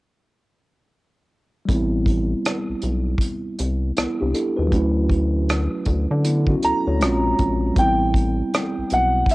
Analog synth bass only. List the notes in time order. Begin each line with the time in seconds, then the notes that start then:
1.69 A1
2.70 B1
2.83 B1
3.60 C2
3.98 C2
4.22 C2
4.59 D#2
4.73 D2
5.87 D2
6.11 D3
6.64 D2
6.87 D2
7.02 A#1
7.40 A#1
7.77 A1
8.78 B1
8.92 B1